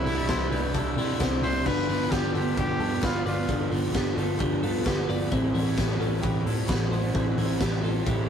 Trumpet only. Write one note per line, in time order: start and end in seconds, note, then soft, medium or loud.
0.00 1.20 E4 loud
1.43 1.68 C5 loud
1.66 2.13 B4 loud
2.12 2.35 G4 loud
2.35 2.56 G4 medium
2.58 3.06 G4 loud
3.05 3.26 F4 medium
3.27 3.69 F4 medium